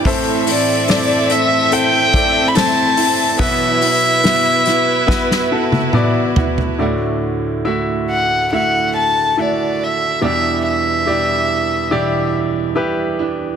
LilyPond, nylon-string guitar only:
\new Staff \with { instrumentName = "Nylon-string guitar" } { \time 4/4 \key d \mixolydian \tempo 4 = 71 <a, e a c' e'>8 <a c' e'>4 <a c' e'>4 <a c' e'>8 <e a c' e'>8 <a c' e'>8 | <b, e b e' fis'>8 <b e' fis'>4 <b e' fis'>4 <b e' fis'>8 <e b e' fis'>8 <b e' fis'>8 | <d a e' fis'>4 <d a e' fis'>4 <d a e' fis'>4 <d a e' fis'>4 | <e, b, e g d' e'>4 <e g d' e'>4 <e, b, e g d' e'>4 <e g d' e'>8 <e g d' e'>8 | }